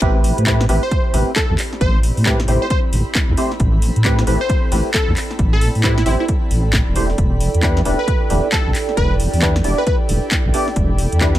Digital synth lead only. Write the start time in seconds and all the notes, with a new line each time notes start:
0.83 C5
1.36 A4
1.81 C5
2.62 C5
2.70 C5
4.41 C5
4.94 A4
5.53 A4
5.84 E4
5.98 E4
6.06 E4
6.20 E4
7.99 B4
8.52 A4
8.97 B4
9.78 B4
9.87 B4